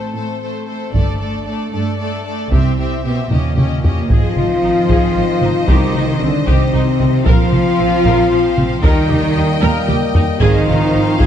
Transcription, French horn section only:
0, 0, Header, 1, 2, 480
1, 0, Start_track
1, 0, Tempo, 525855
1, 862, Time_signature, 6, 3, 24, 8
1, 10283, End_track
2, 0, Start_track
2, 0, Title_t, "French horn section"
2, 0, Program_c, 0, 60
2, 0, Note_on_c, 0, 57, 41
2, 0, Note_on_c, 0, 60, 46
2, 827, Note_off_c, 0, 60, 0
2, 830, Note_off_c, 0, 57, 0
2, 854, Note_on_c, 0, 57, 55
2, 855, Note_on_c, 0, 62, 53
2, 2263, Note_off_c, 0, 57, 0
2, 2263, Note_off_c, 0, 62, 0
2, 2303, Note_on_c, 0, 64, 55
2, 2306, Note_on_c, 0, 55, 53
2, 2750, Note_off_c, 0, 64, 0
2, 2751, Note_off_c, 0, 55, 0
2, 2770, Note_on_c, 0, 59, 63
2, 2999, Note_off_c, 0, 59, 0
2, 3011, Note_on_c, 0, 58, 64
2, 3014, Note_on_c, 0, 61, 44
2, 3465, Note_off_c, 0, 61, 0
2, 3737, Note_off_c, 0, 58, 0
2, 3743, Note_on_c, 0, 65, 106
2, 5176, Note_on_c, 0, 63, 98
2, 5182, Note_off_c, 0, 65, 0
2, 5651, Note_on_c, 0, 62, 83
2, 5659, Note_off_c, 0, 63, 0
2, 5892, Note_on_c, 0, 60, 79
2, 5896, Note_off_c, 0, 62, 0
2, 6617, Note_off_c, 0, 60, 0
2, 6619, Note_on_c, 0, 65, 117
2, 7907, Note_off_c, 0, 65, 0
2, 8062, Note_on_c, 0, 63, 107
2, 8767, Note_off_c, 0, 63, 0
2, 8779, Note_on_c, 0, 58, 88
2, 9020, Note_off_c, 0, 58, 0
2, 9509, Note_on_c, 0, 63, 110
2, 10188, Note_off_c, 0, 63, 0
2, 10214, Note_on_c, 0, 65, 115
2, 10283, Note_off_c, 0, 65, 0
2, 10283, End_track
0, 0, End_of_file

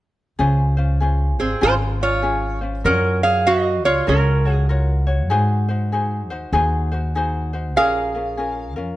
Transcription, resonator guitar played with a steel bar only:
0, 0, Header, 1, 2, 480
1, 0, Start_track
1, 0, Key_signature, -5, "major"
1, 0, Tempo, 614125
1, 306, Time_signature, 4, 2, 24, 8
1, 7006, End_track
2, 0, Start_track
2, 0, Title_t, "Resonator guitar played with a steel bar"
2, 0, Program_c, 0, 25
2, 1091, Note_on_c, 0, 68, 63
2, 1098, Note_on_c, 0, 60, 56
2, 1259, Note_off_c, 0, 60, 0
2, 1273, Note_off_c, 0, 68, 0
2, 1275, Note_on_c, 0, 72, 99
2, 1282, Note_on_c, 0, 65, 75
2, 1355, Note_off_c, 0, 72, 0
2, 1361, Note_off_c, 0, 65, 0
2, 1585, Note_on_c, 0, 73, 82
2, 1589, Note_on_c, 0, 65, 66
2, 2023, Note_off_c, 0, 73, 0
2, 2025, Note_off_c, 0, 65, 0
2, 2232, Note_on_c, 0, 70, 94
2, 2242, Note_on_c, 0, 61, 64
2, 2512, Note_off_c, 0, 61, 0
2, 2527, Note_on_c, 0, 77, 92
2, 2529, Note_off_c, 0, 70, 0
2, 2532, Note_on_c, 0, 68, 76
2, 2695, Note_off_c, 0, 68, 0
2, 2709, Note_on_c, 0, 75, 98
2, 2711, Note_off_c, 0, 77, 0
2, 2715, Note_on_c, 0, 66, 75
2, 2989, Note_off_c, 0, 66, 0
2, 3008, Note_off_c, 0, 75, 0
2, 3011, Note_on_c, 0, 73, 90
2, 3014, Note_on_c, 0, 65, 67
2, 3177, Note_off_c, 0, 65, 0
2, 3193, Note_off_c, 0, 73, 0
2, 3195, Note_on_c, 0, 70, 68
2, 3196, Note_on_c, 0, 61, 60
2, 3539, Note_off_c, 0, 70, 0
2, 3539, Note_on_c, 0, 68, 68
2, 3637, Note_off_c, 0, 68, 0
2, 3639, Note_off_c, 0, 61, 0
2, 6073, Note_on_c, 0, 77, 112
2, 6077, Note_on_c, 0, 68, 76
2, 6820, Note_off_c, 0, 77, 0
2, 6822, Note_off_c, 0, 68, 0
2, 7006, End_track
0, 0, End_of_file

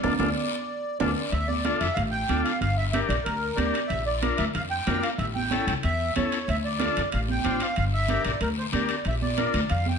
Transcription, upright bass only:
0, 0, Header, 1, 2, 480
1, 0, Start_track
1, 0, Key_signature, -1, "minor"
1, 0, Tempo, 322061
1, 57, Time_signature, 4, 2, 24, 8
1, 14883, End_track
2, 0, Start_track
2, 0, Title_t, "Upright bass"
2, 0, Program_c, 0, 32
2, 59, Note_on_c, 0, 38, 96
2, 236, Note_off_c, 0, 38, 0
2, 283, Note_on_c, 0, 38, 91
2, 467, Note_off_c, 0, 38, 0
2, 1498, Note_on_c, 0, 38, 93
2, 1673, Note_off_c, 0, 38, 0
2, 1968, Note_on_c, 0, 38, 85
2, 2544, Note_off_c, 0, 38, 0
2, 2691, Note_on_c, 0, 41, 87
2, 2786, Note_off_c, 0, 41, 0
2, 2928, Note_on_c, 0, 33, 87
2, 3312, Note_off_c, 0, 33, 0
2, 3412, Note_on_c, 0, 38, 73
2, 3603, Note_off_c, 0, 38, 0
2, 3887, Note_on_c, 0, 31, 77
2, 4463, Note_off_c, 0, 31, 0
2, 4600, Note_on_c, 0, 34, 89
2, 4699, Note_off_c, 0, 34, 0
2, 4858, Note_on_c, 0, 38, 82
2, 5238, Note_off_c, 0, 38, 0
2, 5325, Note_on_c, 0, 38, 80
2, 5518, Note_off_c, 0, 38, 0
2, 5809, Note_on_c, 0, 34, 85
2, 6384, Note_off_c, 0, 34, 0
2, 6535, Note_on_c, 0, 38, 85
2, 6628, Note_off_c, 0, 38, 0
2, 6776, Note_on_c, 0, 41, 81
2, 7157, Note_off_c, 0, 41, 0
2, 7260, Note_on_c, 0, 41, 85
2, 7447, Note_off_c, 0, 41, 0
2, 7723, Note_on_c, 0, 33, 86
2, 8301, Note_off_c, 0, 33, 0
2, 8450, Note_on_c, 0, 37, 87
2, 8546, Note_off_c, 0, 37, 0
2, 8702, Note_on_c, 0, 40, 82
2, 9081, Note_off_c, 0, 40, 0
2, 9192, Note_on_c, 0, 40, 77
2, 9376, Note_off_c, 0, 40, 0
2, 9657, Note_on_c, 0, 38, 88
2, 10231, Note_off_c, 0, 38, 0
2, 10388, Note_on_c, 0, 41, 89
2, 10478, Note_off_c, 0, 41, 0
2, 10634, Note_on_c, 0, 33, 87
2, 11009, Note_off_c, 0, 33, 0
2, 11111, Note_on_c, 0, 33, 85
2, 11296, Note_off_c, 0, 33, 0
2, 11585, Note_on_c, 0, 31, 79
2, 12157, Note_off_c, 0, 31, 0
2, 12297, Note_on_c, 0, 34, 84
2, 12392, Note_off_c, 0, 34, 0
2, 12528, Note_on_c, 0, 38, 84
2, 12915, Note_off_c, 0, 38, 0
2, 13004, Note_on_c, 0, 38, 77
2, 13201, Note_off_c, 0, 38, 0
2, 13494, Note_on_c, 0, 34, 86
2, 14071, Note_off_c, 0, 34, 0
2, 14216, Note_on_c, 0, 38, 91
2, 14312, Note_off_c, 0, 38, 0
2, 14466, Note_on_c, 0, 41, 88
2, 14846, Note_off_c, 0, 41, 0
2, 14883, End_track
0, 0, End_of_file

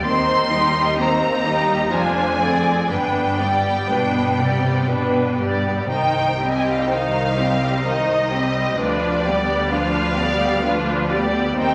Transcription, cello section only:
0, 0, Header, 1, 2, 480
1, 0, Start_track
1, 0, Tempo, 931677
1, 30, Time_signature, 3, 2, 24, 8
1, 991, Tempo, 985222
1, 2431, Tempo, 1006711
1, 3391, Tempo, 940439
1, 5868, End_track
2, 0, Start_track
2, 0, Title_t, "Cello section"
2, 0, Program_c, 0, 48
2, 30, Note_on_c, 0, 39, 59
2, 972, Note_off_c, 0, 39, 0
2, 996, Note_on_c, 0, 41, 53
2, 1460, Note_off_c, 0, 41, 0
2, 1469, Note_on_c, 0, 43, 47
2, 1901, Note_off_c, 0, 43, 0
2, 1953, Note_on_c, 0, 47, 52
2, 2176, Note_off_c, 0, 47, 0
2, 2192, Note_on_c, 0, 48, 47
2, 2431, Note_on_c, 0, 47, 46
2, 2433, Note_off_c, 0, 48, 0
2, 2673, Note_off_c, 0, 47, 0
2, 2674, Note_on_c, 0, 43, 39
2, 2918, Note_off_c, 0, 43, 0
2, 2918, Note_on_c, 0, 36, 47
2, 4341, Note_off_c, 0, 36, 0
2, 4358, Note_on_c, 0, 38, 49
2, 5771, Note_off_c, 0, 38, 0
2, 5786, Note_on_c, 0, 39, 56
2, 5868, Note_off_c, 0, 39, 0
2, 5868, End_track
0, 0, End_of_file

